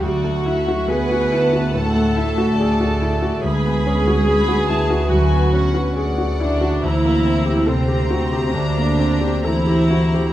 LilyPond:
<<
  \new Staff \with { instrumentName = "Violin section" } { \time 4/4 \key d \lydian \tempo 4 = 71 << { fis''4 gis''8 a''2~ a''8 | b''4 b''8 a''8 gis''8 fis''8 fis''4 | bes''4 bes''2 bes''4 | } \\ { d''8 e''8 fis''4 fis''8 e''8 d''4 | b'4 b'2 d''4 | c''4 c''2 c''4 | } >> }
  \new Staff \with { instrumentName = "Grand piano" } { \time 4/4 \key d \lydian d,16 a16 e'16 fis'16 gis'16 fis'16 e'16 fis'16 a,16 a16 e'16 fis'16 gis'16 fis'16 e'16 fis'16 | d,16 b16 cis'16 fis'16 gis'16 fis'16 e'16 fis'16 d,16 b16 cis'16 fis'16 gis'16 fis'16 e'16 fis'16 | d,16 bes16 c'16 g'16 a'16 g'16 fis'16 g'16 d,16 bes16 c'16 g'16 a'16 g'16 fis'16 g'16 | }
  \new Staff \with { instrumentName = "Viola section" } { \time 4/4 \key d \lydian fis'4 b'4 a'2 | gis'2 fis'4 r8 d'8 | e'4 c'4 d'4 e'4 | }
  \new Staff \with { instrumentName = "Cello section" } { \clef bass \time 4/4 \key d \lydian fis4 b4 a2 | gis2 fis4 r8 d8 | e4 c4 d4 e4 | }
  \new Staff \with { instrumentName = "Double bass section" } { \clef bass \time 4/4 \key d \lydian d,1 | d,1 | d,1 | }
>>